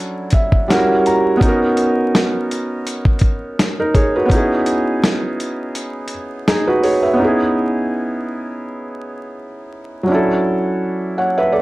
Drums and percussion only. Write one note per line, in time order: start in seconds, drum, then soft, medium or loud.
0.31 kick loud
0.31 closed hi-hat medium
0.52 kick medium
0.70 snare loud
0.70 closed hi-hat medium
1.06 closed hi-hat medium
1.41 kick loud
1.41 closed hi-hat medium
1.77 closed hi-hat medium
2.15 snare loud
2.15 closed hi-hat medium
2.51 closed hi-hat medium
2.87 closed hi-hat medium
3.05 kick medium
3.19 kick medium
3.19 closed hi-hat medium
3.59 snare loud
3.59 closed hi-hat medium
3.95 kick medium
3.95 closed hi-hat medium
4.30 kick loud
4.30 closed hi-hat medium
4.66 closed hi-hat medium
5.04 snare loud
5.04 closed hi-hat medium
5.40 closed hi-hat medium
5.75 closed hi-hat medium
6.08 closed hi-hat medium
6.48 snare loud
6.48 closed hi-hat medium
6.83 open hi-hat soft